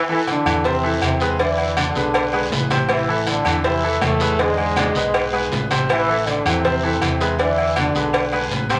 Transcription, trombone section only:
0.10 E3 E4
0.30 D3 D4
0.66 C3 C4
1.03 C3 C4
1.40 E3 E4
1.78 D3 D4
2.90 E3 E4
3.28 D3 D4
3.65 E3 E4
4.03 A2 A3
4.40 G#2 G#3
5.90 E3 E4
6.27 D3 D4
6.46 C3 C4
7.02 C3 C4
7.39 E3 E4
7.77 D3 D4

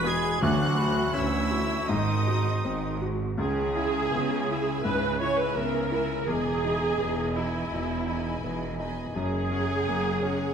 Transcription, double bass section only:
Already playing: E1
0.42 D2
1.15 D2
1.89 G#1
2.65 G#1
3.38 C#2
4.12 C#2
4.84 C#2
5.55 C#2
6.27 E1
6.99 E1
7.70 E1
8.41 E1
9.13 F#1
9.85 F#1

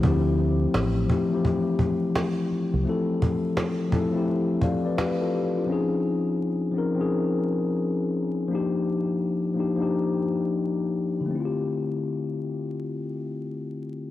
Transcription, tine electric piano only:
0.01 F3 A3 C4
0.06 E4 G4
1.07 F3 A3 C4
1.12 E4 G4
1.28 E3 A3 C4
1.33 F3 E4 G4
2.83 F3 A3 C4
2.88 E4 A4
3.88 F3 A3 C4
3.93 E4 A4
4.11 F3 A3 C4
4.16 E4 G4
4.63 D5 F5
4.86 B4 D5
4.98 G4 B4
5.21 F4 A4
5.34 E4 G4
5.57 D4 F4
5.66 F3 C4 C#4
5.71 D#4 G#4
6.72 F3 C4 C#4
6.77 D#4 A#4
6.94 F3 C4 C#4
6.99 D#4 G#4
8.48 F3 A#3 D4
8.53 D#4 G4
9.54 F3 A#3 D4
9.59 D#4 G4
9.75 F3 A#3 D4
9.80 D#4 G4
11.21 D3
11.26 A3
11.31 C4
11.35 E4
11.40 F4
11.45 G4

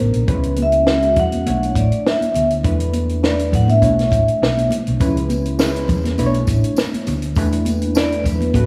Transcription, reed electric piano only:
Already playing: F3 D4 D#4 A#4
0.28 G#3 C#4 E4 B4
0.87 G#3 C#4 E4 F#4
1.46 A3 D4 E4 C#5
2.64 A3 D4 E4 B4
3.23 A3 D4 E4 B4
3.81 A3 D4 E4 C#5
5.00 G#3 C#4 E4 B4
5.59 G#3 C#4 E4 B4
6.18 A3 D4 E4 B4
6.26 C#5
7.37 A3 D4 E4 B4
7.96 A3 D4 E4 B4
8.55 A3 C#4 F#4 B4

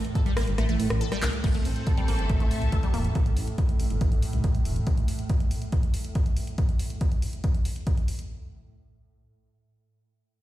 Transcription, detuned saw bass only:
0.37 A1
0.48 G1
0.58 A1
0.69 A1
0.80 A2
0.90 A1
1.23 C2
1.44 A1
1.65 A1
2.08 A1
2.19 G1
2.30 A1
2.40 A1
2.62 C2
2.94 E1
3.15 A1
3.37 A1
3.80 A1
3.91 G1
4.01 A1
4.12 A1
4.33 C2
4.65 E1

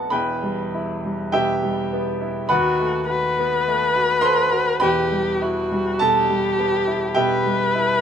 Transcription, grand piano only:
Already playing: A3 B3 C4 F#4 A4 D#5 F#5 A5
0.10 E1 E2 B4 G5 B5
0.43 G3
0.75 E4
1.04 G3
1.32 B2 G4 E5 G5
1.63 G3
1.93 B3
2.21 E4
2.49 D#2 B4 F#5 B5
2.80 A3
3.10 F#4
3.39 B3
3.68 A3
3.96 F#4
4.21 A4 C5 C6
4.52 F#4
4.80 E1 E2 B4 G5 B5
5.12 G3
5.42 E4
5.72 G3
5.99 B2 A4 A5
6.30 G3
6.59 B3
6.87 E4
7.14 B2 G4 E5 G5
7.46 G3
7.75 E4

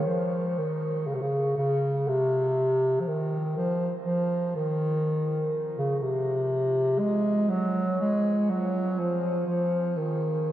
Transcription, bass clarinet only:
0.06 F3
0.58 D#3
1.07 C#3
1.14 C3
1.22 C#3
1.57 C#3
2.08 C3
3.00 F3
3.07 D#3
3.57 F3
4.06 F3
4.56 D#3
5.78 C#3
5.98 C3 C#3
6.99 G#3
7.49 F#3
8.00 G#3
8.50 F#3
8.98 F3
9.46 F3
9.96 D#3

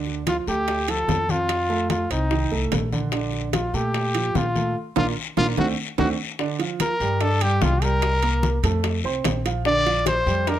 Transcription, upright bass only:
Already playing: D2
0.47 D2
1.08 F2
2.10 C2
2.51 C2
2.72 A#1
3.74 A#2
4.35 A#2
4.96 A#1
5.37 A#1
5.57 D2
5.98 D2
7.00 G2
7.61 C2
8.63 F2
9.04 C2
9.24 A#1
10.26 F2

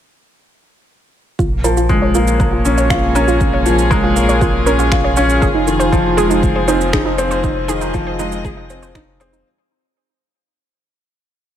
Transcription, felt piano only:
1.64 F3
1.89 G#3
2.15 A#3
2.65 C#4
2.90 F4
3.15 C#4
3.66 F3
3.91 G#3
4.16 A#3
4.66 C#4
4.92 F4
5.17 C#4
5.67 D#3
5.92 F3
6.18 G#3
6.68 C4
6.93 D#4
7.18 C4
7.69 D#3
7.94 F3
8.19 G#3
8.70 C4
8.96 D#4
9.21 C4

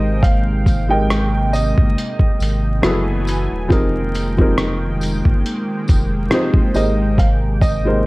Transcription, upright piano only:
Already playing: D#5
0.23 F5
0.90 G5
1.53 D#5
6.76 D#5
7.19 F5
7.61 D#5
7.87 C5

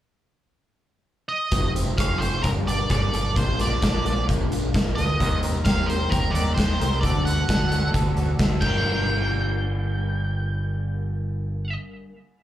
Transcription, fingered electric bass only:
1.52 F1
1.99 F1
2.44 G1
2.67 G1
2.90 G1
3.14 G1
3.37 A#1
3.83 A#1
4.29 A#1
4.52 A#1
4.75 A#1
4.98 D2
5.21 D#2
5.66 D#2
6.12 D#2
6.34 D#2
6.58 D#2
6.80 C2
7.03 D2
7.49 D2
7.94 D2
8.17 D2
8.39 D2
8.62 G1

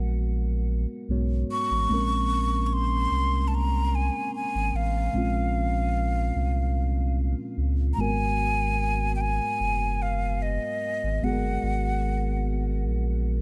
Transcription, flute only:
1.51 C#6
2.66 C#6
2.73 C6
3.48 A5
3.54 A#5
3.95 G#5
4.35 G#5
4.76 F5
7.94 A#5
8.00 G#5
9.16 G5
9.21 G#5
10.02 F5
10.42 D#5
11.24 F#5

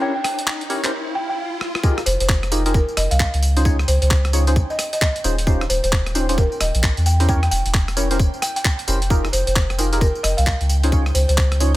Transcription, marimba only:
0.01 G5
0.15 G5
0.24 G5
1.15 G5
1.29 G5
2.06 C5
2.20 C5
2.74 A#4
2.97 D#5
3.11 F5
3.88 C5
4.02 C5
4.70 D#5
4.93 D#5
5.02 D#5
5.70 C5
5.84 C5
6.38 A#4
6.61 D#5
7.06 G5
7.29 G5
7.43 G5
7.51 G5
8.42 G5
8.56 G5
9.33 C5
9.47 C5
10.01 A#4
10.23 D#5
10.37 F5
11.15 C5
11.28 C5

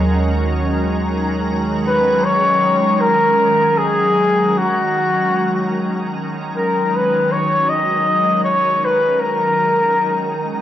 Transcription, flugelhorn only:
1.87 B4
2.24 C#5
3.00 A#4
3.78 G#4
4.57 F#4
6.57 A#4
6.96 B4
7.32 C#5
7.69 D#5
8.44 C#5
8.85 B4
9.20 A#4

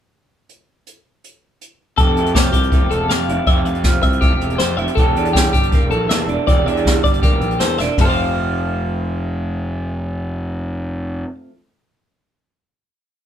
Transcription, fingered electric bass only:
1.99 F1
2.17 F2
2.54 C2
2.82 F1
2.92 E1
3.11 F2
3.29 F1
3.47 F1
3.65 F2
4.03 C2
4.31 F1
4.40 E1
4.60 F2
4.78 F1
4.97 E1
5.16 E2
5.54 G1
5.80 E1
5.90 A#1
6.09 E2
6.27 E1
6.48 E1
6.65 E2
7.04 G1
7.31 E1
7.41 A#1
7.61 E2
7.80 E1
7.98 F1

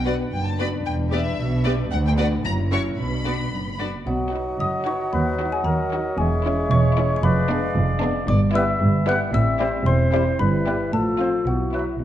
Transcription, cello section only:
Already playing: B2
0.32 F#2
0.85 E2
1.38 B2
1.91 D2
2.44 F#2
2.98 B2
3.52 F#2
3.66 G2
3.80 F#2
4.07 B2
4.60 F#2
5.13 D#2
5.66 D#2
6.18 E2
6.71 E2
7.23 F2
7.76 F2
8.28 G2
8.80 G2
9.33 A2
9.86 E2
10.40 G2
10.93 A2
11.48 B2

